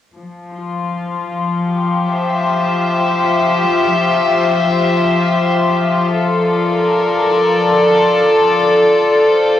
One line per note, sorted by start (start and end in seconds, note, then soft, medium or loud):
0.15 8.73 F3 medium
0.55 9.60 F4 medium
1.68 6.15 G4 medium
2.08 6.16 C5 medium
2.08 6.16 E5 medium
6.12 9.60 A4 medium
6.37 8.73 A#4 medium
6.37 9.60 D5 medium
9.21 9.60 C5 medium